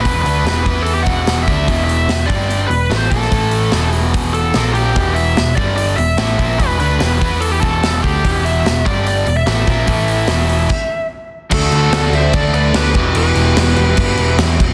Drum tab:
CC |----------------|----------------|----------------|----------------|
HH |o-o-o-o-o-o-o-o-|o-o-o-o-o-o-o-o-|o-o-o-o-o-o-o-o-|o-o-o-o-o-o-o-o-|
SD |----o-------o---|----o-------o--o|----o-------o---|----o-------o---|
BD |o-----o---o---o-|o-----o-------o-|o-------o-------|o-----o-------o-|

CC |----------------|----------------|--------x-------|x-x-x-x-x-x-x-x-|
HH |o-o-o-o-o-o-o-o-|o-o-o-o-o-o-o-o-|o-o-o-o---------|----------------|
SD |----o-------o---|----o-------o---|----o-----------|----o-------o---|
BD |o-----o---o---o-|o-----o-------o-|o-------o-------|o-------o-----o-|

CC |x-x-x-x-x-x-x-x-|
HH |----------------|
SD |--o-o-------o---|
BD |--------o-----o-|